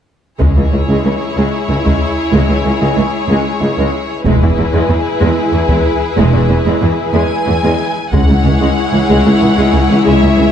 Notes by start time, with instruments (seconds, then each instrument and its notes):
0.40 double bass section C#2, cello section C#2, viola section G#3 E4, violin section G#4 C#5, taiko
0.56 cello section C#2, viola section E3
0.72 cello section C#2, viola section C#3
0.89 cello section C#2, viola section G#3
1.05 cello section C#2, viola section E3
1.37 cello section C#2, viola section G#3
1.69 cello section C#2, viola section C#3
1.85 cello section C#2, viola section G#3, taiko
2.33 cello section C#2, double bass section C#2, viola section G#3
2.49 cello section C#2, viola section E3
2.65 cello section C#2, viola section C#3
2.81 cello section C#2, viola section G#3
2.97 cello section C#2, viola section E3
3.30 cello section C#2, viola section G#3
3.61 cello section C#2, viola section C#3
3.78 cello section C#2, viola section G#3
4.25 double bass section E1, cello section E2, viola section G#3 E4, violin section G#4 B4, taiko
4.42 cello section E2, viola section E3
4.58 cello section E2, viola section E3
4.74 cello section E2, viola section G#3
4.89 cello section E2, viola section E3
5.20 cello section E2, viola section G#3
5.53 cello section E2, viola section E3
5.69 cello section E2, viola section G#3, taiko
6.17 double bass section E1, cello section E2, viola section G#3
6.34 cello section E2, viola section E3
6.50 cello section E2, viola section E3
6.66 cello section E2, viola section G#3
6.82 cello section E2, viola section E3
7.13 cello section E2, viola section G#3, violin section G#5
7.45 cello section E2, viola section E3
7.62 cello section E2, viola section G#3
8.11 cello section C#2, double bass section C#2, viola section G#3 E4, violin section G#4 C#5 F#5, taiko
8.15 french horn section G#3 E4
8.28 cello section C#2, viola section C#3
8.44 double bass section C#2, cello section C#2, viola section E3
8.61 cello section C#2, viola section G#3
8.94 cello section C#2, viola section E3
9.09 cello section C#2, double bass section C#2, viola section G#3
9.26 cello section C#2, viola section C#3
9.42 cello section C#2, double bass section C#2, viola section E3
9.57 cello section C#2, viola section G#3
9.73 double bass section C#2, cello section C#2, viola section C#3
9.89 cello section C#2, viola section E3
10.04 cello section C#2, double bass section C#2, viola section G#3, violin section E5
10.21 cello section C#2, viola section C#3
10.38 cello section C#2, double bass section C#2, viola section E3